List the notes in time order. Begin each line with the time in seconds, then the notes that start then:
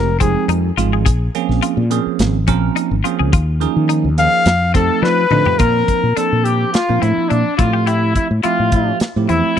Already playing: F1 F3 G#3 C4 D#4 G4 A#4
0.20 F3 G#3 C4 D#4 G4 G#4, kick, closed hi-hat
0.48 F2 D#4, closed hi-hat
0.77 G#1 F3 G#3 C4 D#4 F4, closed hi-hat
0.93 G#4
1.06 A#1 G#4, kick, closed hi-hat
1.35 F3 A#3 C4 C#4 G#4, closed hi-hat
1.49 A#1, snare
1.63 F4, closed hi-hat
1.77 A#2
1.90 F3 A#3 C4 C#4 G#4, closed hi-hat
2.06 muted fretless electric bass stroke
2.19 G#1, snare, closed hi-hat
2.47 A#1 F3 A#3 C4 C#4 A#4, kick, closed hi-hat
2.76 D#4, closed hi-hat
2.91 G#1
3.04 F3 A#3 C4 C#4 F4 G#4, closed hi-hat
3.19 C#2 G#4
3.33 D#2 F4, kick, closed hi-hat
3.61 F3 A#3 C#4 D#4 G#4, closed hi-hat
3.76 D#3
3.89 D#4, closed hi-hat
4.04 D#2
4.18 F3 A#3 C#4 D#4 G#4 F5, closed hi-hat
4.46 F2, snare, closed hi-hat
4.74 F3 A3 C4 D#4 G4 A4, kick, closed hi-hat
5.02 F3 D4 B4, snare
5.31 D3 F3 A3 C4 D#4 F4, mid tom
5.46 G4, floor tom
5.58 A#2 F3 A#3 C4 D4 F4 A#4, kick, closed hi-hat
5.88 kick, closed hi-hat
6.04 A#2
6.16 F3 A#3 C4 D4 A4 C5, muted fretless electric bass stroke, closed hi-hat
6.33 A#2
6.44 G4, closed hi-hat
6.73 F4, muted fretless electric bass stroke, snare, closed hi-hat
6.89 A#2 F3 A#3 C4 D4 A#4
7.01 A2 C4 E4, closed hi-hat
7.17 muted fretless electric bass stroke
7.29 A#2 D4, closed hi-hat
7.57 A2 F3 A3 C4 E4 F4 G4, kick, closed hi-hat
7.73 G4
7.86 E4 G4, closed hi-hat
8.15 E4, kick, closed hi-hat
8.31 A2
8.43 F3 A3 C4 E4 F4 G4 E5, muted fretless electric bass stroke, closed hi-hat
8.60 A2
8.72 kick, closed hi-hat
9.00 muted fretless electric bass stroke, snare, closed hi-hat
9.16 A2 F3 A3 C4 E4 G4
9.28 E2 C4 E4, closed hi-hat
9.44 muted fretless electric bass stroke